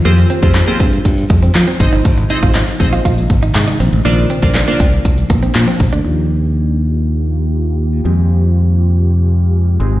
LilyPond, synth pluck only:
\new Staff \with { instrumentName = "Synth pluck" } { \time 4/4 \key ees \major \tempo 4 = 120 <c' f' g' aes' c''>8 r16 <c' f' g' aes' c''>8 <c' f' g' aes' c''>4. r8. <c' ees' aes' c'' ees''>8~ | <c' ees' aes' c'' ees''>16 r16 <c' ees' aes' c'' ees''>8. r16 <c' ees' aes' c'' ees''>4. r4 | <d' f' bes' c'' d''>8 r16 <d' f' bes' c'' d''>8 <d' f' bes' c'' d''>4. r4 r16 | <bes ees' f' g'>1 |
<aes c' f' g'>2.~ <aes c' f' g'>8 <aes c' ees' aes'>8 | }